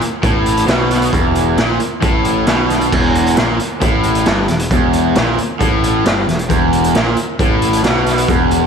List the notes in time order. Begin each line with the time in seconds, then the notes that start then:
0.01 muted picked electric bass stroke, muted overdriven electric guitar stroke, closed hi-hat
0.23 A1 A2, kick, closed hi-hat
0.46 closed hi-hat
0.57 closed hi-hat
0.67 B1 B2, snare, closed hi-hat
0.91 snare, closed hi-hat
1.02 closed hi-hat
1.12 E1 E2, kick, closed hi-hat
1.35 closed hi-hat
1.57 A#1 A#2, snare, closed hi-hat
1.79 muted picked electric bass stroke, muted overdriven electric guitar stroke, closed hi-hat
2.02 A1 A2, kick, closed hi-hat
2.25 closed hi-hat
2.46 B1 B2, snare, closed hi-hat
2.70 snare, closed hi-hat
2.81 closed hi-hat
2.92 E1 E2, kick, crash
3.15 closed hi-hat
3.26 closed hi-hat
3.36 A#1 A#2, snare, closed hi-hat
3.59 muted overdriven electric guitar stroke, muted picked electric bass stroke, closed hi-hat
3.81 A1 A2, kick, closed hi-hat
4.03 closed hi-hat
4.15 closed hi-hat
4.25 G1 G2, snare, closed hi-hat
4.48 E1 E2, snare, closed hi-hat
4.59 closed hi-hat
4.70 E1 E2, kick, closed hi-hat
4.93 closed hi-hat
5.15 A#1 A#2, snare, closed hi-hat
5.38 muted overdriven electric guitar stroke, muted picked electric bass stroke, closed hi-hat
5.60 A1 A2, kick, closed hi-hat
5.84 closed hi-hat
6.05 G1 G2, snare, closed hi-hat
6.28 E1 E2, snare, closed hi-hat
6.39 closed hi-hat
6.49 E1 E2, kick, closed hi-hat
6.73 closed hi-hat
6.84 closed hi-hat
6.95 A#1 A#2, snare, closed hi-hat
7.17 muted overdriven electric guitar stroke, muted picked electric bass stroke, closed hi-hat
7.39 A1 A2, kick, closed hi-hat
7.62 closed hi-hat
7.73 closed hi-hat
7.83 B1 B2, snare, closed hi-hat
8.06 snare, closed hi-hat
8.18 closed hi-hat
8.28 E1 E2, kick, closed hi-hat
8.51 closed hi-hat